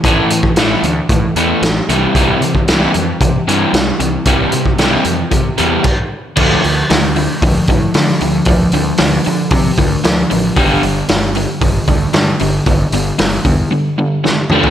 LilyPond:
<<
  \new Staff \with { instrumentName = "Overdriven electric guitar" } { \clef bass \time 4/4 \key d \minor \tempo 4 = 114 <a, e a>8 <a, e>8 <a, e a>8 <a, e>8 <a, e>8 <a, e a>8 <a, e>8 <c e g>8 | <c e g>8 <c e>8 <c e g>8 <c e>8 <c e>8 <c e g>8 <c e>8 <c e>8 | <c e g>8 <c e>8 <c e g>8 <c e>8 <c e>8 <c e g>8 r4 | <d f a>8 <d f>8 <d f>8 <d f>8 <d f>8 <d f>8 <d f>8 <d f>8 |
<d f>8 <d f>8 <d f>8 <d f>8 <d f>8 <d f>8 <d f>8 <d f>8 | <g, d g>8 <g, d>8 <g, d>8 <g, d>8 <g, d>8 <g, d>8 <g, d>8 <g, d>8 | <g, d>8 <g, d>8 <g, d>8 <g, d>8 <g, d>8 <g, d>8 <g, d>8 <d f a>8 | }
  \new Staff \with { instrumentName = "Picked electric bass" } { \clef bass \time 4/4 \key d \minor a,,8 a,8 a,,8 d,8 a,8 e,8 a,,8 c,8 | c,8 c8 c,8 f,8 c8 g,8 c,8 c,8 | c,8 c8 c,8 f,8 c8 e,8 r4 | d,8 d,8 d,4 d,8 a,8 d8 d,8 |
d,8 d,8 d,8 d8 c8 d,8 d,8 a,,8 | g,,8 g,,8 g,,4 g,,8 d,8 g,8 g,,8 | g,,8 g,,8 g,,8 e,8 r2 | }
  \new DrumStaff \with { instrumentName = "Drums" } \drummode { \time 4/4 <hh bd>8 hh16 bd16 <hh sn>8 hh8 <hh bd>8 hh8 <hh sn>8 hh8 | <hh bd>8 hh16 bd16 <hh sn>8 hh8 <hh bd>8 hh8 <hh sn>8 hh8 | <hh bd>8 hh16 bd16 <hh sn>8 hh8 <hh bd>8 hh8 <cymc bd>4 | <cymc bd>8 hho8 <hho sn>8 hho8 <hho bd>8 <hho bd>8 <hho sn>16 sn16 hho8 |
<hho bd>8 hho8 <hho sn>8 hho8 <hho bd>8 <hho bd>8 <hho sn>8 hho8 | <hho bd>8 hho8 <hho sn>8 hho8 <hho bd>8 <hho bd>8 <hho sn>8 hho8 | <hho bd>8 hho8 <hho sn>8 <hho bd>8 r4 sn8 toml16 tomfh16 | }
>>